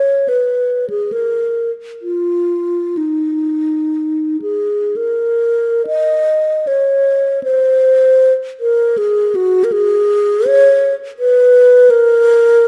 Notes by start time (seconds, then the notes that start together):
Already playing: C#5
0.28 B4
0.90 G#4
1.12 A#4
2.02 F4
2.97 D#4
4.42 G#4
4.96 A#4
5.87 D#5
6.67 C#5
7.43 C5
8.60 A#4
8.98 G#4
9.35 F#4
9.64 A#4
9.72 G#4
10.47 C#5
11.19 B4
11.90 A#4